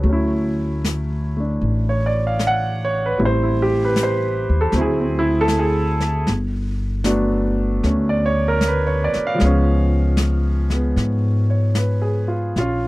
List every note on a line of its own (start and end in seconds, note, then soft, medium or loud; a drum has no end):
0.00 1.57 D2 medium
0.00 3.16 F#3 medium
0.00 0.20 C#5 soft
0.04 1.35 A3 soft
0.04 brush sweep soft
0.09 3.20 C#4 soft
0.09 3.18 E4 medium
0.85 snare medium
0.85 hi-hat pedal medium
1.37 3.17 A3 soft
1.37 3.19 D4 soft
1.61 3.13 A1 medium
1.61 brush sweep soft
1.89 2.14 C#5 medium
2.06 2.22 D5 medium
2.27 2.39 F5 medium
2.39 snare soft
2.39 hi-hat pedal medium
2.47 2.95 F#5 loud
2.85 3.00 C#5 medium
3.06 3.17 B4 medium
3.18 4.45 A1 medium
3.18 4.73 G3 soft
3.18 4.72 A3 soft
3.18 4.74 C4 soft
3.18 3.42 E4 medium
3.18 brush sweep soft
3.25 3.47 C5 medium
3.43 3.69 E4 medium
3.62 3.78 G4 medium
3.85 3.96 B4 medium
3.96 snare medium
3.96 hi-hat pedal medium
4.03 4.60 C5 medium
4.49 4.72 D#2 medium
4.61 4.72 A4 medium
4.72 6.24 D2 medium
4.72 6.28 F#3 medium
4.72 6.28 A3 medium
4.72 4.99 C4 medium
4.72 brush sweep soft
4.72 snare soft
4.78 5.17 E4 medium
4.78 5.03 G#4 medium
5.01 5.26 C4 medium
5.19 5.34 E4 medium
5.41 5.51 A4 medium
5.48 snare soft
5.48 hi-hat pedal soft
5.59 6.28 G#4 medium
6.00 snare soft
6.27 7.79 G1 medium
6.27 brush sweep soft
6.27 snare soft
7.04 9.39 F#3 medium
7.04 7.82 A3 medium
7.04 9.39 B3 medium
7.04 9.39 D4 medium
7.04 snare medium
7.04 hi-hat pedal medium
7.83 9.11 D2 medium
7.83 9.39 A3 soft
7.83 9.40 C#4 medium
7.83 brush sweep soft
7.83 snare soft
8.09 8.35 D5 medium
8.26 8.43 C#5 medium
8.48 8.60 A#4 medium
8.61 snare soft
8.61 hi-hat pedal medium
8.68 8.90 B4 medium
8.87 9.13 C#5 medium
9.04 9.21 D5 medium
9.14 muted upright bass stroke soft
9.14 snare soft
9.27 11.19 F5 medium
9.34 12.52 F3 medium
9.34 10.68 G#3 medium
9.40 10.93 C#2 medium
9.40 10.71 B3 medium
9.40 brush sweep soft
9.40 snare soft
9.45 12.58 C#4 medium
10.17 snare medium
10.17 hi-hat pedal medium
10.70 12.54 G#3 soft
10.70 12.56 B3 soft
10.70 snare soft
10.96 12.51 G#2 medium
10.96 brush sweep soft
10.96 snare soft
11.50 11.91 C#5 medium
11.75 12.27 B4 medium
11.75 snare medium
11.75 hi-hat pedal soft
12.02 12.43 G#4 medium
12.28 12.57 F4 medium
12.56 12.88 A#1 medium
12.56 12.88 F4 medium
12.56 brush sweep soft
12.56 snare soft
12.60 12.88 C#4 medium